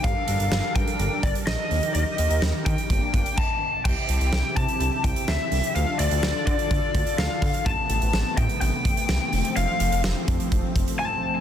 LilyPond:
<<
  \new Staff \with { instrumentName = "Lead electric guitar" } { \time 4/4 \key g \minor \tempo 4 = 126 f''4. g''4 d''8 ees''4 | ees''4 r8 g''4. a''4 | \key c \major g''4. a''4 g''8 e''4 | f''8 d''4 d''4. f''4 |
a''4. g''8 g''2 | f''4 r2 a''4 | }
  \new Staff \with { instrumentName = "Analog synth pad" } { \time 4/4 \key g \minor << { <g d' bes'>2.~ <g d' bes'>8 <ees ees' bes'>8~ | <ees ees' bes'>2 bes4 r4 | \key c \major <c c' g'>1 | <d d' a'>1 |
<c b>2.~ <c b>8 <f c'>8~ | <f c'>1 | } \\ { a'2.~ a'8 g'8~ | g'2 d'4 r4 | e'1 | f'1 |
a1~ | a1 | } >> }
  \new Staff \with { instrumentName = "Analog synth bass" } { \clef bass \time 4/4 \key g \minor g,,16 r16 g,,16 g,,16 g,,16 r16 g,16 r16 g,,16 r16 g,,16 r16 bes,,16 r16 ees,16 r16 | ees,16 r16 ees,16 ees,16 ees,16 r16 ees16 r16 g,,16 r16 g,,16 r4 r16 | \key c \major c,16 r16 c,16 c,16 c,16 r16 c16 r16 c,16 r16 c,16 r16 d,16 r16 c,16 r16 | d,16 r16 d,16 d,16 d,16 r16 d16 r16 d,16 r16 d,16 r16 d,16 r16 d16 r16 |
a,,16 r16 a,,16 a,,16 a,,16 r16 a,16 r16 a,,16 r16 a,,16 r16 c,16 r16 f,,16 r16 | f,,16 r16 f,,16 f,,16 f,,16 r16 f,16 r16 f,,16 r16 f,,16 r4 r16 | }
  \new DrumStaff \with { instrumentName = "Drums" } \drummode { \time 4/4 <hh bd>8 hh16 hh16 sn8 <hh bd>16 hh16 hh8 <hh bd>16 hh16 sn8 hho16 hh16 | hh8 hh16 hh16 sn8 <hh bd>16 hh16 <hh bd>8 <hh bd>16 hh16 <cymc bd>4 | <cymc bd>8 hh16 hh16 sn8 <hh bd>16 hh16 hh8 <hh bd>16 hh16 sn8 hho16 hh16 | hh8 hh16 hh16 sn8 <hh bd>16 hh16 <hh bd>8 <hh bd>16 hh16 sn8 <hho bd>16 hh16 |
<hh bd>8 hh16 hh16 sn8 <hh bd>16 hh16 hh8 <hh bd>16 hh16 sn8 hho16 hh16 | hh8 hh16 hh16 sn8 <hh bd>16 hh16 <hh bd>8 <hh bd>16 hh16 r4 | }
>>